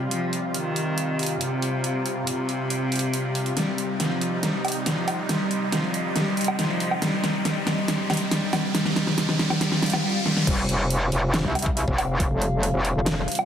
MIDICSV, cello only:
0, 0, Header, 1, 2, 480
1, 0, Start_track
1, 0, Tempo, 431655
1, 127, Time_signature, 4, 2, 24, 8
1, 14956, End_track
2, 0, Start_track
2, 0, Title_t, "Cello"
2, 0, Program_c, 0, 42
2, 126, Note_on_c, 0, 53, 100
2, 388, Note_off_c, 0, 53, 0
2, 607, Note_on_c, 0, 51, 97
2, 1472, Note_off_c, 0, 51, 0
2, 1567, Note_on_c, 0, 48, 98
2, 2432, Note_off_c, 0, 48, 0
2, 2526, Note_on_c, 0, 48, 103
2, 3871, Note_off_c, 0, 48, 0
2, 3966, Note_on_c, 0, 55, 89
2, 4227, Note_off_c, 0, 55, 0
2, 4446, Note_on_c, 0, 53, 88
2, 4907, Note_off_c, 0, 53, 0
2, 4925, Note_on_c, 0, 55, 92
2, 5187, Note_off_c, 0, 55, 0
2, 5405, Note_on_c, 0, 53, 90
2, 5867, Note_off_c, 0, 53, 0
2, 5885, Note_on_c, 0, 55, 96
2, 6147, Note_off_c, 0, 55, 0
2, 6366, Note_on_c, 0, 53, 92
2, 6827, Note_off_c, 0, 53, 0
2, 6846, Note_on_c, 0, 55, 100
2, 7108, Note_off_c, 0, 55, 0
2, 7327, Note_on_c, 0, 53, 95
2, 7787, Note_off_c, 0, 53, 0
2, 7805, Note_on_c, 0, 55, 102
2, 8067, Note_off_c, 0, 55, 0
2, 8286, Note_on_c, 0, 55, 98
2, 8547, Note_off_c, 0, 55, 0
2, 8766, Note_on_c, 0, 55, 100
2, 9028, Note_off_c, 0, 55, 0
2, 9245, Note_on_c, 0, 55, 105
2, 9507, Note_off_c, 0, 55, 0
2, 9725, Note_on_c, 0, 55, 103
2, 9946, Note_off_c, 0, 55, 0
2, 9965, Note_on_c, 0, 55, 106
2, 10186, Note_off_c, 0, 55, 0
2, 10205, Note_on_c, 0, 55, 102
2, 10427, Note_off_c, 0, 55, 0
2, 10445, Note_on_c, 0, 55, 104
2, 10667, Note_off_c, 0, 55, 0
2, 10686, Note_on_c, 0, 55, 108
2, 10907, Note_off_c, 0, 55, 0
2, 10926, Note_on_c, 0, 55, 104
2, 11147, Note_off_c, 0, 55, 0
2, 11166, Note_on_c, 0, 55, 107
2, 11387, Note_off_c, 0, 55, 0
2, 11405, Note_on_c, 0, 55, 104
2, 11627, Note_off_c, 0, 55, 0
2, 14956, End_track
0, 0, End_of_file